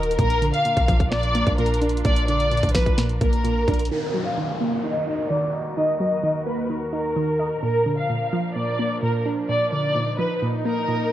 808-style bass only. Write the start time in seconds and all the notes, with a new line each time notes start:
Already playing: D#1
0.19 A#1
0.77 A#1
1.47 A#1
2.05 A#1
2.63 A#1
3.21 A#1
3.68 A#1